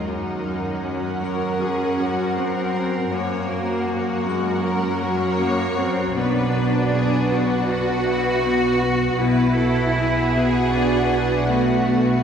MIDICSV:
0, 0, Header, 1, 9, 480
1, 0, Start_track
1, 0, Tempo, 762389
1, 43, Time_signature, 4, 2, 24, 8
1, 7701, End_track
2, 0, Start_track
2, 0, Title_t, "Vibraphone"
2, 0, Program_c, 0, 11
2, 0, Control_c, 0, 64, 127
2, 0, Note_on_c, 0, 87, 27
2, 56, Control_c, 0, 64, 0
2, 165, Control_c, 0, 64, 127
2, 499, Note_off_c, 0, 87, 0
2, 788, Note_on_c, 0, 70, 32
2, 788, Note_on_c, 0, 85, 34
2, 2191, Note_off_c, 0, 70, 0
2, 2191, Note_off_c, 0, 85, 0
2, 2704, Note_on_c, 0, 85, 41
2, 2945, Note_on_c, 0, 82, 40
2, 3885, Control_c, 0, 64, 0
2, 3987, Control_c, 0, 64, 127
2, 4101, Note_off_c, 0, 85, 0
2, 4343, Note_off_c, 0, 82, 0
2, 7701, End_track
3, 0, Start_track
3, 0, Title_t, "Violin section"
3, 0, Program_c, 1, 48
3, 50, Note_on_c, 1, 78, 53
3, 1944, Note_off_c, 1, 78, 0
3, 1969, Note_on_c, 1, 78, 58
3, 3850, Note_off_c, 1, 78, 0
3, 3878, Note_on_c, 1, 78, 65
3, 5768, Note_off_c, 1, 78, 0
3, 5799, Note_on_c, 1, 78, 69
3, 7700, Note_off_c, 1, 78, 0
3, 7701, End_track
4, 0, Start_track
4, 0, Title_t, "Ambient pad"
4, 0, Program_c, 2, 92
4, 39, Note_on_c, 2, 66, 42
4, 39, Note_on_c, 2, 78, 44
4, 43, Note_on_c, 2, 70, 44
4, 1939, Note_off_c, 2, 66, 0
4, 1939, Note_off_c, 2, 78, 0
4, 1941, Note_off_c, 2, 70, 0
4, 1963, Note_on_c, 2, 70, 50
4, 1963, Note_on_c, 2, 78, 47
4, 1964, Note_on_c, 2, 66, 46
4, 3848, Note_off_c, 2, 66, 0
4, 3848, Note_off_c, 2, 70, 0
4, 3848, Note_off_c, 2, 78, 0
4, 3863, Note_on_c, 2, 71, 48
4, 3863, Note_on_c, 2, 78, 49
4, 3865, Note_on_c, 2, 66, 52
4, 5761, Note_off_c, 2, 66, 0
4, 5761, Note_off_c, 2, 78, 0
4, 5782, Note_off_c, 2, 71, 0
4, 5788, Note_on_c, 2, 78, 46
4, 5789, Note_on_c, 2, 66, 49
4, 5789, Note_on_c, 2, 71, 48
4, 7694, Note_off_c, 2, 78, 0
4, 7695, Note_off_c, 2, 66, 0
4, 7695, Note_off_c, 2, 71, 0
4, 7701, End_track
5, 0, Start_track
5, 0, Title_t, "Viola section"
5, 0, Program_c, 3, 48
5, 46, Note_on_c, 3, 70, 48
5, 48, Note_on_c, 3, 66, 46
5, 1942, Note_off_c, 3, 70, 0
5, 1943, Note_off_c, 3, 66, 0
5, 1967, Note_on_c, 3, 66, 57
5, 1967, Note_on_c, 3, 70, 60
5, 3849, Note_off_c, 3, 70, 0
5, 3850, Note_off_c, 3, 66, 0
5, 3871, Note_on_c, 3, 66, 62
5, 3874, Note_on_c, 3, 71, 58
5, 5765, Note_off_c, 3, 66, 0
5, 5766, Note_off_c, 3, 71, 0
5, 5793, Note_on_c, 3, 71, 64
5, 5794, Note_on_c, 3, 66, 60
5, 7697, Note_off_c, 3, 66, 0
5, 7697, Note_off_c, 3, 71, 0
5, 7701, End_track
6, 0, Start_track
6, 0, Title_t, "Violin section"
6, 0, Program_c, 4, 48
6, 49, Note_on_c, 4, 63, 46
6, 523, Note_off_c, 4, 63, 0
6, 526, Note_on_c, 4, 61, 46
6, 766, Note_on_c, 4, 70, 47
6, 767, Note_off_c, 4, 61, 0
6, 1007, Note_off_c, 4, 70, 0
6, 1011, Note_on_c, 4, 68, 45
6, 1253, Note_off_c, 4, 68, 0
6, 1260, Note_on_c, 4, 66, 47
6, 1495, Note_off_c, 4, 66, 0
6, 1500, Note_on_c, 4, 70, 55
6, 1967, Note_on_c, 4, 73, 56
6, 1970, Note_off_c, 4, 70, 0
6, 2205, Note_off_c, 4, 73, 0
6, 2209, Note_on_c, 4, 70, 52
6, 2439, Note_on_c, 4, 66, 54
6, 2445, Note_off_c, 4, 70, 0
6, 2918, Note_off_c, 4, 66, 0
6, 2925, Note_on_c, 4, 70, 55
6, 3161, Note_off_c, 4, 70, 0
6, 3168, Note_on_c, 4, 73, 69
6, 3879, Note_off_c, 4, 73, 0
6, 3879, Note_on_c, 4, 71, 61
6, 4349, Note_off_c, 4, 71, 0
6, 4360, Note_on_c, 4, 68, 66
6, 4593, Note_off_c, 4, 68, 0
6, 4605, Note_on_c, 4, 66, 51
6, 4835, Note_on_c, 4, 62, 54
6, 4839, Note_off_c, 4, 66, 0
6, 5071, Note_on_c, 4, 64, 57
6, 5073, Note_off_c, 4, 62, 0
6, 5310, Note_off_c, 4, 64, 0
6, 5321, Note_on_c, 4, 66, 61
6, 5787, Note_on_c, 4, 71, 62
6, 5796, Note_off_c, 4, 66, 0
6, 6027, Note_on_c, 4, 69, 55
6, 6031, Note_off_c, 4, 71, 0
6, 6262, Note_on_c, 4, 68, 67
6, 6270, Note_off_c, 4, 69, 0
6, 7231, Note_off_c, 4, 68, 0
6, 7238, Note_on_c, 4, 66, 54
6, 7701, Note_off_c, 4, 66, 0
6, 7701, End_track
7, 0, Start_track
7, 0, Title_t, "Cello section"
7, 0, Program_c, 5, 48
7, 34, Note_on_c, 5, 54, 55
7, 1006, Note_off_c, 5, 54, 0
7, 1006, Note_on_c, 5, 61, 60
7, 1489, Note_off_c, 5, 61, 0
7, 1491, Note_on_c, 5, 60, 65
7, 1965, Note_on_c, 5, 58, 76
7, 1966, Note_off_c, 5, 60, 0
7, 2667, Note_off_c, 5, 58, 0
7, 2683, Note_on_c, 5, 56, 66
7, 2916, Note_on_c, 5, 54, 68
7, 2921, Note_off_c, 5, 56, 0
7, 3390, Note_on_c, 5, 58, 68
7, 3395, Note_off_c, 5, 54, 0
7, 3627, Note_on_c, 5, 60, 72
7, 3632, Note_off_c, 5, 58, 0
7, 3867, Note_on_c, 5, 62, 76
7, 3870, Note_off_c, 5, 60, 0
7, 4825, Note_on_c, 5, 66, 79
7, 4831, Note_off_c, 5, 62, 0
7, 5786, Note_off_c, 5, 66, 0
7, 5789, Note_on_c, 5, 64, 87
7, 6745, Note_on_c, 5, 62, 72
7, 6754, Note_off_c, 5, 64, 0
7, 7221, Note_off_c, 5, 62, 0
7, 7233, Note_on_c, 5, 57, 76
7, 7701, Note_off_c, 5, 57, 0
7, 7701, End_track
8, 0, Start_track
8, 0, Title_t, "Harp"
8, 0, Program_c, 6, 46
8, 0, Note_on_c, 6, 51, 54
8, 0, Note_on_c, 6, 63, 35
8, 52, Note_on_c, 6, 42, 55
8, 66, Note_off_c, 6, 51, 0
8, 66, Note_off_c, 6, 63, 0
8, 284, Note_off_c, 6, 42, 0
8, 292, Note_on_c, 6, 42, 37
8, 521, Note_off_c, 6, 42, 0
8, 528, Note_on_c, 6, 42, 41
8, 763, Note_off_c, 6, 42, 0
8, 770, Note_on_c, 6, 42, 55
8, 1009, Note_off_c, 6, 42, 0
8, 1016, Note_on_c, 6, 42, 42
8, 1248, Note_off_c, 6, 42, 0
8, 1256, Note_on_c, 6, 42, 42
8, 1487, Note_off_c, 6, 42, 0
8, 1494, Note_on_c, 6, 42, 60
8, 1727, Note_on_c, 6, 54, 43
8, 1958, Note_off_c, 6, 42, 0
8, 1965, Note_on_c, 6, 42, 62
8, 2194, Note_off_c, 6, 42, 0
8, 2201, Note_on_c, 6, 42, 45
8, 2436, Note_off_c, 6, 42, 0
8, 2444, Note_on_c, 6, 42, 45
8, 2672, Note_off_c, 6, 42, 0
8, 2680, Note_on_c, 6, 42, 66
8, 2908, Note_off_c, 6, 42, 0
8, 2916, Note_on_c, 6, 42, 47
8, 3155, Note_off_c, 6, 42, 0
8, 3162, Note_on_c, 6, 42, 47
8, 3392, Note_off_c, 6, 42, 0
8, 3399, Note_on_c, 6, 42, 70
8, 3636, Note_off_c, 6, 54, 0
8, 3644, Note_on_c, 6, 54, 49
8, 3877, Note_on_c, 6, 47, 67
8, 3894, Note_off_c, 6, 42, 0
8, 4115, Note_off_c, 6, 47, 0
8, 4123, Note_on_c, 6, 47, 50
8, 4357, Note_off_c, 6, 47, 0
8, 4364, Note_on_c, 6, 47, 47
8, 4598, Note_off_c, 6, 47, 0
8, 4606, Note_on_c, 6, 47, 69
8, 4833, Note_off_c, 6, 47, 0
8, 4841, Note_on_c, 6, 47, 48
8, 5066, Note_off_c, 6, 47, 0
8, 5074, Note_on_c, 6, 47, 47
8, 5308, Note_off_c, 6, 47, 0
8, 5316, Note_on_c, 6, 47, 68
8, 5560, Note_on_c, 6, 59, 48
8, 5790, Note_off_c, 6, 47, 0
8, 5798, Note_on_c, 6, 47, 71
8, 6035, Note_off_c, 6, 47, 0
8, 6043, Note_on_c, 6, 47, 47
8, 6099, Note_off_c, 6, 54, 0
8, 6271, Note_off_c, 6, 47, 0
8, 6278, Note_on_c, 6, 47, 46
8, 6510, Note_off_c, 6, 47, 0
8, 6518, Note_on_c, 6, 47, 66
8, 6749, Note_off_c, 6, 47, 0
8, 6757, Note_on_c, 6, 47, 47
8, 6987, Note_off_c, 6, 47, 0
8, 6994, Note_on_c, 6, 47, 46
8, 7228, Note_off_c, 6, 47, 0
8, 7236, Note_on_c, 6, 47, 63
8, 7473, Note_off_c, 6, 59, 0
8, 7480, Note_on_c, 6, 59, 44
8, 7701, Note_off_c, 6, 47, 0
8, 7701, Note_off_c, 6, 59, 0
8, 7701, End_track
9, 0, Start_track
9, 0, Title_t, "Double bass section"
9, 0, Program_c, 7, 48
9, 48, Note_on_c, 7, 42, 48
9, 1943, Note_off_c, 7, 42, 0
9, 1965, Note_on_c, 7, 42, 53
9, 3849, Note_off_c, 7, 42, 0
9, 3874, Note_on_c, 7, 35, 58
9, 5766, Note_off_c, 7, 35, 0
9, 5792, Note_on_c, 7, 35, 58
9, 7696, Note_off_c, 7, 35, 0
9, 7701, End_track
0, 0, End_of_file